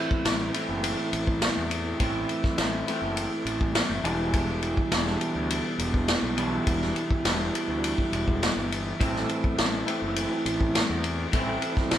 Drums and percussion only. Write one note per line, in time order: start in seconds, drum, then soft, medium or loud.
0.11 kick medium
0.25 snare loud
0.25 ride medium
0.54 ride medium
0.84 ride loud
1.13 ride medium
1.27 kick medium
1.42 snare loud
1.42 ride loud
1.71 ride medium
2.00 kick medium
2.00 ride medium
2.29 ride soft
2.44 kick medium
2.44 snare soft
2.58 snare loud
2.58 ride medium
2.88 ride medium
3.17 ride medium
3.46 ride medium
3.61 kick medium
3.75 snare loud
3.75 ride loud
4.05 ride medium
4.34 kick loud
4.34 ride medium
4.62 ride medium
4.77 kick medium
4.92 snare loud
4.92 ride medium
5.07 snare soft
5.21 ride medium
5.50 ride loud
5.79 ride medium
5.94 kick medium
6.08 snare loud
6.08 ride medium
6.38 ride medium
6.67 kick loud
6.67 ride medium
6.81 snare soft
6.96 ride medium
7.11 kick medium
7.25 snare loud
7.25 ride medium
7.55 ride medium
7.84 ride medium
7.98 kick medium
8.13 ride medium
8.28 kick medium
8.43 snare loud
8.43 ride medium
8.72 ride medium
9.01 kick loud
9.01 ride medium
9.16 snare soft
9.29 ride medium
9.44 kick medium
9.58 snare loud
9.58 ride medium
9.88 ride medium
10.16 ride medium
10.46 ride medium
10.61 kick medium
10.75 snare loud
10.75 ride medium
11.04 ride medium
11.33 kick loud
11.33 ride medium
11.62 ride medium
11.77 kick medium
11.77 snare soft
11.91 snare loud
11.91 ride medium